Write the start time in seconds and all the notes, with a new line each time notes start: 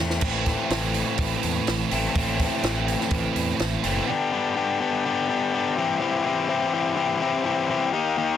Already playing: E2 E3 C4
0.00 A3
0.10 snare
0.21 A1 A2 E3 A3 C4 E4, kick, crash
0.46 kick, snare, open hi-hat
0.70 A1, snare, open hi-hat
0.94 open hi-hat
1.18 A1, kick, open hi-hat
1.43 E2, open hi-hat
1.67 A1, snare, open hi-hat
1.90 A1 A2 A3 C4 E4, open hi-hat
1.94 E3
2.14 A1 A2 E3 A3 E4, kick, open hi-hat
2.18 C4
2.39 kick, snare, open hi-hat
2.63 A1, snare, open hi-hat
2.88 open hi-hat
3.01 snare
3.11 A1, kick, open hi-hat
3.36 E2, open hi-hat
3.59 A1, snare, open hi-hat
3.83 F#1 A2 E3 A3 C4 E4, open hi-hat
4.07 B3 D4 G4 A4 G5 B5
4.32 B3 D4 G4
4.56 B3 D4 G4
4.80 B3 D4 G4
5.05 B3 D4 G4
5.29 B3 D4 G4
5.54 B3 D4 G4
5.75 E3 C4 E4 G4 C5 E5 D6
6.00 E3 C4 E4 G4
6.25 E3 C4 E4 G4
6.49 E3 C4 E4 G4
6.73 E3 C4 E4 G4
6.96 E3 C4 E4 G4
7.20 E3 C4 E4 G4
7.45 E3 C4 E4 G4
7.69 E3 C4 E4 G4
7.93 A#3 D#4 G4 F5 D#6
8.17 A#3 D#4 G4